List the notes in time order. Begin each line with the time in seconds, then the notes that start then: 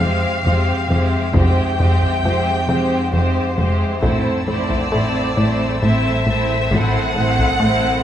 Already playing: F2 F5
0.00 F2 G#3 C4 G4 C5
0.42 F1 F2 G#3 C4 G4 C5
0.87 F1 F2 G#3 C4 G4 C5
1.32 F1 F2 G#3 C4 G4 C5 G5, taiko
1.79 F1 F2 G#3 C4 G4 C5
2.02 taiko
2.23 F1 F2 F3 G#3 C4 G4 C5
2.68 F1 F2 G#3 C4 G4 C5
3.12 F1 F2 G#3 C4 G4 C5
3.57 F1 F2 G#3 C4 G4 C5
4.01 A1 A2 A3 C4 E4 C5 A5 E6, taiko
4.47 A1 A2 A3 C4 E4 C5 D5
4.69 taiko
4.92 A1 A2 A3 C4 E4 C5
5.37 A1 A2 A3 C4 E4 C5
5.81 A1 A2 A3 C4 E4 C5 E5
6.26 A1 A2 A3 C4 E4 C5
6.71 A1 A2 A3 C4 E4 C5 F#5, taiko
7.02 D#6
7.16 A1 A2 A3 C4 E4 C5
7.39 taiko
7.60 A1 A2 A3 C4 C5
7.64 E4